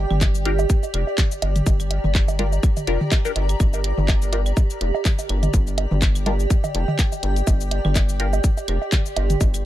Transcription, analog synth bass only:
0.10 0.66 G1 medium
0.94 1.04 F1 medium
1.42 1.61 G1 medium
1.66 1.99 G1 loud
2.04 2.59 G1 medium
2.87 2.98 F1 medium
3.36 3.55 G1 medium
3.60 3.93 G1 loud
3.98 4.53 G1 medium
4.81 4.91 F1 medium
5.29 5.48 G1 medium
5.54 5.86 G1 loud
5.91 6.46 G1 medium
6.75 6.85 F1 medium
7.23 7.42 G1 medium
7.47 7.80 G1 medium
7.85 8.40 G1 medium
8.68 8.78 F1 medium
9.16 9.36 G1 medium
9.41 9.65 G1 loud

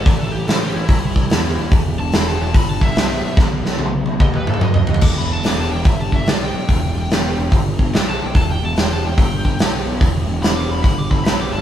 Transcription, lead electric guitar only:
0.06 0.19 D5 medium
0.19 0.32 A4 medium
0.33 0.47 G4 medium
0.47 0.60 A4 loud
0.60 0.74 G4 loud
0.74 0.87 E4 medium
0.88 1.69 E4 medium
2.00 2.14 A5 loud
2.14 2.27 B5 loud
2.27 2.41 A5 medium
2.43 2.55 A5 medium
2.56 2.69 B5 loud
2.70 2.82 A5 medium
2.82 3.36 E5 loud
4.22 4.34 D#5 loud
4.35 4.48 B4 medium
4.50 4.62 A4 medium
4.62 4.74 D#5 medium
4.75 4.98 D#5 loud
5.04 5.18 D6 medium
5.18 5.31 B5 loud
5.33 5.45 A5 medium
5.46 5.59 D6 loud
5.60 5.72 A5 medium
5.72 5.86 G5 medium
5.86 6.00 E5 medium
6.01 6.14 A5 medium
6.13 6.27 E5 medium
6.30 6.42 D5 medium
6.43 7.63 G5 loud
7.95 8.08 G5 loud
8.09 8.24 A5 medium
8.24 8.36 G5 medium
8.36 8.49 A5 medium
8.51 8.65 G5 loud
8.65 8.77 A5 loud
8.77 8.93 G5 loud
8.93 9.06 A5 medium
9.06 9.86 G5 loud
10.43 10.56 B5 loud
10.57 10.71 D6 medium
10.71 10.82 B5 medium
10.83 10.98 B5 medium
10.98 11.11 D6 medium
11.11 11.24 B5 loud
11.25 11.39 B5 medium
11.41 11.54 D6 medium
11.53 11.62 A5 medium

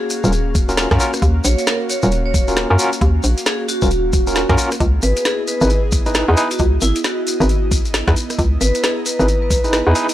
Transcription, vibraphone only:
0.00 0.52 G#4 medium
1.44 1.53 C#5 medium
1.58 1.64 C#5 medium
1.67 1.80 A#4 medium
1.89 1.98 C#5 medium
2.03 2.09 C#5 medium
2.26 2.70 C#5 medium
3.46 3.60 G#4 medium
3.69 3.80 F#4 medium
3.82 4.44 F#4 medium
5.03 5.12 B4 medium
5.17 5.22 B4 medium
5.25 5.39 G#4 medium
5.48 5.56 B4 medium
5.61 5.67 B4 medium
6.51 6.59 F#4 medium
6.82 6.95 E4 loud
7.04 7.68 F#4 medium
8.61 8.70 B4 medium
8.75 8.80 B4 medium
8.83 8.97 G#4 medium
9.06 9.15 B4 medium
9.20 9.25 B4 medium
9.42 9.87 B4 medium

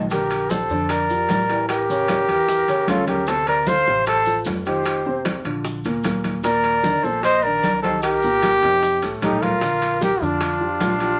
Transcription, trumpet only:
0.11 0.51 G4 medium
0.50 0.91 A4 medium
0.90 1.68 A#4 medium
1.69 2.91 G4 loud
2.89 3.07 F4 medium
3.08 3.30 G4 medium
3.28 3.48 A4 loud
3.48 3.70 A#4 loud
3.68 4.07 C5 loud
4.08 4.44 A4 loud
4.67 5.22 G4 medium
6.45 7.06 A#4 loud
7.04 7.23 A4 medium
7.24 7.45 C5 loud
7.43 7.82 A#4 loud
7.82 8.01 A4 medium
8.03 9.18 G4 loud
9.23 9.44 D#4 medium
9.42 10.02 F4 medium
10.04 10.24 G4 medium
10.23 11.20 D4 medium

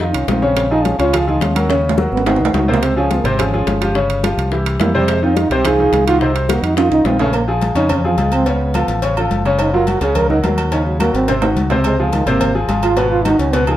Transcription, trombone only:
0.00 0.16 D#4 medium
0.15 0.31 C#4 medium
0.29 0.70 C4 medium
0.71 0.87 D#4 loud
0.85 0.99 C#4 medium
0.99 1.26 F4 medium
1.28 1.44 D#4 medium
1.42 1.84 C#4 medium
2.13 2.28 B3 medium
2.27 2.41 C4 loud
2.40 2.56 D#3 medium
2.55 2.70 F#3 medium
2.69 2.84 A#3 loud
2.83 2.96 C4 medium
2.97 3.12 C#4 loud
3.11 3.21 C4 medium
3.20 3.30 A#3 medium
3.29 3.40 C4 medium
3.39 3.95 C#4 medium
4.80 4.93 A#3 medium
4.95 5.10 G3 loud
5.09 5.22 G#3 medium
5.22 5.38 C4 medium
5.37 5.50 D#4 loud
5.51 5.67 G4 loud
5.66 6.07 G#4 loud
6.07 6.23 F4 loud
6.21 6.35 D#4 loud
6.36 6.51 F#3 medium
6.49 6.65 A#3 medium
6.63 6.79 D#4 loud
6.77 6.91 F4 loud
6.91 7.07 D#4 loud
7.06 7.19 C4 medium
7.20 7.33 A3 loud
7.34 7.42 A#3 medium
7.76 7.92 D#4 medium
7.91 8.04 C#4 medium
8.04 8.20 F3 medium
8.19 8.34 G#3 medium
8.32 8.49 C4 loud
8.47 9.03 B3 medium
9.60 9.73 D#4 medium
9.73 9.89 F4 loud
9.87 10.01 F#4 loud
10.02 10.18 G#4 medium
10.16 10.29 A#4 loud
10.29 10.38 D#4 medium
10.72 10.85 D#4 medium
10.86 11.01 F#3 medium
10.99 11.14 A#3 medium
11.14 11.40 C4 medium
11.85 11.98 G#3 medium
11.98 12.14 C3 medium
12.12 12.28 D#3 medium
12.26 12.55 A#3 medium
12.83 12.99 F4 loud
12.97 13.10 F#4 medium
13.11 13.26 F4 loud
13.24 13.38 D#4 loud
13.39 13.55 C#4 loud
13.53 13.66 B3 medium
13.67 13.77 D#3 medium

